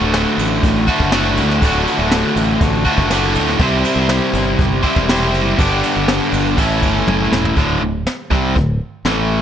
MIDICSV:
0, 0, Header, 1, 4, 480
1, 0, Start_track
1, 0, Tempo, 496278
1, 1565, Time_signature, 4, 2, 24, 8
1, 9108, End_track
2, 0, Start_track
2, 0, Title_t, "Overdriven electric guitar"
2, 0, Program_c, 0, 29
2, 0, Note_on_c, 0, 38, 82
2, 0, Note_on_c, 0, 45, 77
2, 0, Note_on_c, 0, 50, 83
2, 0, Note_on_c, 0, 57, 92
2, 0, Note_on_c, 0, 62, 74
2, 0, Note_on_c, 0, 66, 99
2, 829, Note_off_c, 0, 38, 0
2, 831, Note_off_c, 0, 66, 0
2, 835, Note_off_c, 0, 45, 0
2, 839, Note_off_c, 0, 50, 0
2, 839, Note_off_c, 0, 57, 0
2, 842, Note_on_c, 0, 66, 75
2, 851, Note_on_c, 0, 57, 80
2, 861, Note_on_c, 0, 50, 74
2, 867, Note_on_c, 0, 45, 70
2, 875, Note_on_c, 0, 38, 63
2, 1064, Note_off_c, 0, 38, 0
2, 1070, Note_off_c, 0, 66, 0
2, 1074, Note_off_c, 0, 57, 0
2, 1076, Note_off_c, 0, 45, 0
2, 1076, Note_on_c, 0, 38, 84
2, 1079, Note_off_c, 0, 50, 0
2, 1087, Note_on_c, 0, 45, 84
2, 1095, Note_on_c, 0, 50, 80
2, 1102, Note_on_c, 0, 57, 83
2, 1108, Note_on_c, 0, 66, 82
2, 1545, Note_off_c, 0, 38, 0
2, 1551, Note_off_c, 0, 45, 0
2, 1555, Note_off_c, 0, 50, 0
2, 1559, Note_off_c, 0, 57, 0
2, 1562, Note_off_c, 0, 66, 0
2, 1562, Note_on_c, 0, 38, 99
2, 1569, Note_on_c, 0, 45, 75
2, 1580, Note_on_c, 0, 50, 99
2, 1585, Note_on_c, 0, 57, 85
2, 1593, Note_on_c, 0, 66, 96
2, 2576, Note_off_c, 0, 62, 0
2, 2743, Note_off_c, 0, 66, 0
2, 2747, Note_off_c, 0, 38, 0
2, 2750, Note_off_c, 0, 45, 0
2, 2751, Note_off_c, 0, 57, 0
2, 2754, Note_on_c, 0, 66, 79
2, 2755, Note_off_c, 0, 50, 0
2, 2763, Note_on_c, 0, 57, 77
2, 2771, Note_on_c, 0, 50, 75
2, 2778, Note_on_c, 0, 45, 67
2, 2785, Note_on_c, 0, 38, 64
2, 2983, Note_off_c, 0, 66, 0
2, 2987, Note_off_c, 0, 38, 0
2, 2988, Note_off_c, 0, 57, 0
2, 2992, Note_off_c, 0, 50, 0
2, 2995, Note_off_c, 0, 45, 0
2, 2999, Note_on_c, 0, 38, 78
2, 3005, Note_on_c, 0, 45, 78
2, 3016, Note_on_c, 0, 50, 84
2, 3025, Note_on_c, 0, 57, 93
2, 3029, Note_on_c, 0, 66, 87
2, 3465, Note_off_c, 0, 38, 0
2, 3468, Note_off_c, 0, 45, 0
2, 3471, Note_on_c, 0, 48, 94
2, 3474, Note_off_c, 0, 50, 0
2, 3478, Note_off_c, 0, 57, 0
2, 3480, Note_off_c, 0, 66, 0
2, 3481, Note_on_c, 0, 55, 88
2, 3486, Note_on_c, 0, 60, 87
2, 3491, Note_on_c, 0, 64, 92
2, 3495, Note_on_c, 0, 67, 92
2, 3506, Note_on_c, 0, 72, 108
2, 4656, Note_off_c, 0, 72, 0
2, 4659, Note_off_c, 0, 48, 0
2, 4662, Note_off_c, 0, 67, 0
2, 4664, Note_off_c, 0, 55, 0
2, 4667, Note_off_c, 0, 60, 0
2, 4667, Note_on_c, 0, 72, 71
2, 4670, Note_off_c, 0, 64, 0
2, 4674, Note_on_c, 0, 67, 81
2, 4684, Note_on_c, 0, 64, 85
2, 4691, Note_on_c, 0, 60, 72
2, 4692, Note_on_c, 0, 55, 78
2, 4699, Note_on_c, 0, 48, 74
2, 4898, Note_off_c, 0, 72, 0
2, 4902, Note_off_c, 0, 67, 0
2, 4903, Note_off_c, 0, 48, 0
2, 4907, Note_off_c, 0, 64, 0
2, 4910, Note_off_c, 0, 60, 0
2, 4911, Note_off_c, 0, 55, 0
2, 4915, Note_on_c, 0, 48, 74
2, 4922, Note_on_c, 0, 55, 92
2, 4928, Note_on_c, 0, 60, 94
2, 4936, Note_on_c, 0, 64, 84
2, 4944, Note_on_c, 0, 67, 85
2, 4946, Note_on_c, 0, 72, 87
2, 5382, Note_off_c, 0, 48, 0
2, 5385, Note_off_c, 0, 55, 0
2, 5388, Note_off_c, 0, 60, 0
2, 5392, Note_off_c, 0, 64, 0
2, 5397, Note_off_c, 0, 67, 0
2, 5397, Note_off_c, 0, 72, 0
2, 5398, Note_on_c, 0, 43, 85
2, 5402, Note_on_c, 0, 50, 86
2, 5410, Note_on_c, 0, 55, 87
2, 5417, Note_on_c, 0, 59, 95
2, 5424, Note_on_c, 0, 62, 101
2, 5428, Note_on_c, 0, 67, 99
2, 6344, Note_off_c, 0, 43, 0
2, 6346, Note_off_c, 0, 50, 0
2, 6350, Note_off_c, 0, 55, 0
2, 6351, Note_on_c, 0, 45, 93
2, 6353, Note_off_c, 0, 59, 0
2, 6357, Note_off_c, 0, 62, 0
2, 6358, Note_on_c, 0, 52, 91
2, 6359, Note_off_c, 0, 67, 0
2, 6369, Note_on_c, 0, 57, 99
2, 6374, Note_on_c, 0, 61, 100
2, 6380, Note_on_c, 0, 64, 108
2, 6385, Note_on_c, 0, 69, 112
2, 7302, Note_off_c, 0, 45, 0
2, 7306, Note_off_c, 0, 52, 0
2, 7311, Note_off_c, 0, 57, 0
2, 7314, Note_off_c, 0, 61, 0
2, 7317, Note_off_c, 0, 64, 0
2, 7317, Note_on_c, 0, 38, 73
2, 7319, Note_off_c, 0, 69, 0
2, 7322, Note_on_c, 0, 45, 77
2, 7325, Note_on_c, 0, 50, 90
2, 7546, Note_off_c, 0, 38, 0
2, 7551, Note_off_c, 0, 45, 0
2, 7556, Note_off_c, 0, 50, 0
2, 7558, Note_on_c, 0, 38, 53
2, 7563, Note_on_c, 0, 45, 58
2, 7752, Note_off_c, 0, 38, 0
2, 7755, Note_off_c, 0, 45, 0
2, 8034, Note_on_c, 0, 48, 84
2, 8039, Note_on_c, 0, 55, 87
2, 8045, Note_on_c, 0, 60, 83
2, 8272, Note_off_c, 0, 48, 0
2, 8275, Note_off_c, 0, 55, 0
2, 8278, Note_off_c, 0, 60, 0
2, 8280, Note_on_c, 0, 38, 71
2, 8282, Note_on_c, 0, 45, 68
2, 8475, Note_off_c, 0, 38, 0
2, 8476, Note_off_c, 0, 45, 0
2, 8756, Note_on_c, 0, 45, 86
2, 8766, Note_on_c, 0, 52, 88
2, 8768, Note_on_c, 0, 57, 98
2, 9108, Note_off_c, 0, 45, 0
2, 9108, Note_off_c, 0, 52, 0
2, 9108, Note_off_c, 0, 57, 0
2, 9108, End_track
3, 0, Start_track
3, 0, Title_t, "Fingered electric bass"
3, 0, Program_c, 1, 33
3, 14, Note_on_c, 1, 26, 85
3, 232, Note_off_c, 1, 26, 0
3, 366, Note_on_c, 1, 33, 75
3, 588, Note_off_c, 1, 33, 0
3, 612, Note_on_c, 1, 33, 91
3, 831, Note_off_c, 1, 33, 0
3, 966, Note_on_c, 1, 30, 101
3, 1330, Note_on_c, 1, 38, 83
3, 1345, Note_off_c, 1, 30, 0
3, 1549, Note_off_c, 1, 38, 0
3, 1566, Note_on_c, 1, 26, 102
3, 1787, Note_off_c, 1, 26, 0
3, 1924, Note_on_c, 1, 26, 90
3, 2145, Note_off_c, 1, 26, 0
3, 2284, Note_on_c, 1, 33, 80
3, 2504, Note_off_c, 1, 33, 0
3, 2524, Note_on_c, 1, 33, 105
3, 2744, Note_off_c, 1, 33, 0
3, 2879, Note_on_c, 1, 30, 99
3, 3241, Note_on_c, 1, 38, 85
3, 3255, Note_off_c, 1, 30, 0
3, 3462, Note_off_c, 1, 38, 0
3, 3477, Note_on_c, 1, 36, 105
3, 3700, Note_off_c, 1, 36, 0
3, 3828, Note_on_c, 1, 36, 77
3, 4055, Note_off_c, 1, 36, 0
3, 4193, Note_on_c, 1, 31, 90
3, 4417, Note_off_c, 1, 31, 0
3, 4438, Note_on_c, 1, 31, 99
3, 4660, Note_off_c, 1, 31, 0
3, 4800, Note_on_c, 1, 28, 107
3, 5164, Note_off_c, 1, 28, 0
3, 5164, Note_on_c, 1, 30, 92
3, 5382, Note_off_c, 1, 30, 0
3, 5404, Note_on_c, 1, 31, 117
3, 5623, Note_off_c, 1, 31, 0
3, 5769, Note_on_c, 1, 31, 80
3, 5986, Note_off_c, 1, 31, 0
3, 6120, Note_on_c, 1, 31, 89
3, 6340, Note_off_c, 1, 31, 0
3, 6363, Note_on_c, 1, 33, 108
3, 6583, Note_off_c, 1, 33, 0
3, 6601, Note_on_c, 1, 31, 83
3, 6816, Note_off_c, 1, 31, 0
3, 6844, Note_on_c, 1, 30, 87
3, 7058, Note_off_c, 1, 30, 0
3, 7081, Note_on_c, 1, 28, 70
3, 7297, Note_off_c, 1, 28, 0
3, 7318, Note_on_c, 1, 26, 89
3, 7543, Note_off_c, 1, 26, 0
3, 7560, Note_on_c, 1, 26, 73
3, 7784, Note_off_c, 1, 26, 0
3, 8037, Note_on_c, 1, 36, 85
3, 8264, Note_off_c, 1, 36, 0
3, 8280, Note_on_c, 1, 26, 74
3, 8506, Note_off_c, 1, 26, 0
3, 8752, Note_on_c, 1, 33, 88
3, 9108, Note_off_c, 1, 33, 0
3, 9108, End_track
4, 0, Start_track
4, 0, Title_t, "Drums"
4, 131, Note_on_c, 9, 51, 85
4, 132, Note_on_c, 9, 38, 98
4, 228, Note_off_c, 9, 51, 0
4, 229, Note_off_c, 9, 38, 0
4, 375, Note_on_c, 9, 51, 70
4, 472, Note_off_c, 9, 51, 0
4, 611, Note_on_c, 9, 36, 110
4, 613, Note_on_c, 9, 51, 81
4, 708, Note_off_c, 9, 36, 0
4, 710, Note_off_c, 9, 51, 0
4, 850, Note_on_c, 9, 36, 71
4, 850, Note_on_c, 9, 51, 62
4, 947, Note_off_c, 9, 36, 0
4, 947, Note_off_c, 9, 51, 0
4, 969, Note_on_c, 9, 36, 79
4, 1065, Note_off_c, 9, 36, 0
4, 1083, Note_on_c, 9, 51, 98
4, 1084, Note_on_c, 9, 38, 102
4, 1180, Note_off_c, 9, 51, 0
4, 1181, Note_off_c, 9, 38, 0
4, 1207, Note_on_c, 9, 38, 29
4, 1304, Note_off_c, 9, 38, 0
4, 1324, Note_on_c, 9, 51, 72
4, 1421, Note_off_c, 9, 51, 0
4, 1449, Note_on_c, 9, 38, 33
4, 1546, Note_off_c, 9, 38, 0
4, 1569, Note_on_c, 9, 36, 102
4, 1571, Note_on_c, 9, 51, 94
4, 1666, Note_off_c, 9, 36, 0
4, 1668, Note_off_c, 9, 51, 0
4, 1811, Note_on_c, 9, 51, 72
4, 1908, Note_off_c, 9, 51, 0
4, 2044, Note_on_c, 9, 51, 82
4, 2045, Note_on_c, 9, 38, 85
4, 2141, Note_off_c, 9, 51, 0
4, 2142, Note_off_c, 9, 38, 0
4, 2286, Note_on_c, 9, 51, 74
4, 2383, Note_off_c, 9, 51, 0
4, 2523, Note_on_c, 9, 51, 92
4, 2524, Note_on_c, 9, 36, 114
4, 2620, Note_off_c, 9, 36, 0
4, 2620, Note_off_c, 9, 51, 0
4, 2763, Note_on_c, 9, 36, 72
4, 2763, Note_on_c, 9, 51, 73
4, 2860, Note_off_c, 9, 36, 0
4, 2860, Note_off_c, 9, 51, 0
4, 2882, Note_on_c, 9, 36, 86
4, 2979, Note_off_c, 9, 36, 0
4, 3002, Note_on_c, 9, 51, 106
4, 3003, Note_on_c, 9, 38, 94
4, 3099, Note_off_c, 9, 51, 0
4, 3100, Note_off_c, 9, 38, 0
4, 3242, Note_on_c, 9, 51, 84
4, 3339, Note_off_c, 9, 51, 0
4, 3363, Note_on_c, 9, 38, 33
4, 3460, Note_off_c, 9, 38, 0
4, 3475, Note_on_c, 9, 49, 85
4, 3479, Note_on_c, 9, 36, 115
4, 3572, Note_off_c, 9, 49, 0
4, 3575, Note_off_c, 9, 36, 0
4, 3717, Note_on_c, 9, 51, 73
4, 3814, Note_off_c, 9, 51, 0
4, 3955, Note_on_c, 9, 51, 92
4, 3956, Note_on_c, 9, 38, 104
4, 4052, Note_off_c, 9, 38, 0
4, 4052, Note_off_c, 9, 51, 0
4, 4198, Note_on_c, 9, 51, 66
4, 4294, Note_off_c, 9, 51, 0
4, 4439, Note_on_c, 9, 36, 109
4, 4440, Note_on_c, 9, 51, 86
4, 4536, Note_off_c, 9, 36, 0
4, 4537, Note_off_c, 9, 51, 0
4, 4680, Note_on_c, 9, 36, 77
4, 4684, Note_on_c, 9, 51, 59
4, 4777, Note_off_c, 9, 36, 0
4, 4780, Note_off_c, 9, 51, 0
4, 4801, Note_on_c, 9, 36, 81
4, 4898, Note_off_c, 9, 36, 0
4, 4925, Note_on_c, 9, 51, 91
4, 4926, Note_on_c, 9, 38, 115
4, 5022, Note_off_c, 9, 51, 0
4, 5023, Note_off_c, 9, 38, 0
4, 5165, Note_on_c, 9, 51, 66
4, 5261, Note_off_c, 9, 51, 0
4, 5403, Note_on_c, 9, 36, 106
4, 5406, Note_on_c, 9, 51, 92
4, 5500, Note_off_c, 9, 36, 0
4, 5503, Note_off_c, 9, 51, 0
4, 5641, Note_on_c, 9, 51, 63
4, 5737, Note_off_c, 9, 51, 0
4, 5882, Note_on_c, 9, 51, 88
4, 5883, Note_on_c, 9, 38, 111
4, 5978, Note_off_c, 9, 51, 0
4, 5979, Note_off_c, 9, 38, 0
4, 6127, Note_on_c, 9, 51, 71
4, 6223, Note_off_c, 9, 51, 0
4, 6362, Note_on_c, 9, 51, 101
4, 6364, Note_on_c, 9, 36, 95
4, 6459, Note_off_c, 9, 51, 0
4, 6460, Note_off_c, 9, 36, 0
4, 6601, Note_on_c, 9, 51, 66
4, 6602, Note_on_c, 9, 36, 73
4, 6697, Note_off_c, 9, 51, 0
4, 6699, Note_off_c, 9, 36, 0
4, 6844, Note_on_c, 9, 48, 67
4, 6941, Note_off_c, 9, 48, 0
4, 7085, Note_on_c, 9, 38, 98
4, 7181, Note_off_c, 9, 38, 0
4, 7205, Note_on_c, 9, 43, 87
4, 7301, Note_off_c, 9, 43, 0
4, 7322, Note_on_c, 9, 36, 96
4, 7324, Note_on_c, 9, 42, 69
4, 7419, Note_off_c, 9, 36, 0
4, 7421, Note_off_c, 9, 42, 0
4, 7800, Note_on_c, 9, 42, 55
4, 7801, Note_on_c, 9, 38, 98
4, 7897, Note_off_c, 9, 42, 0
4, 7898, Note_off_c, 9, 38, 0
4, 8041, Note_on_c, 9, 36, 89
4, 8138, Note_off_c, 9, 36, 0
4, 8277, Note_on_c, 9, 42, 54
4, 8281, Note_on_c, 9, 36, 77
4, 8373, Note_off_c, 9, 42, 0
4, 8378, Note_off_c, 9, 36, 0
4, 8757, Note_on_c, 9, 42, 59
4, 8758, Note_on_c, 9, 38, 95
4, 8854, Note_off_c, 9, 42, 0
4, 8855, Note_off_c, 9, 38, 0
4, 9108, End_track
0, 0, End_of_file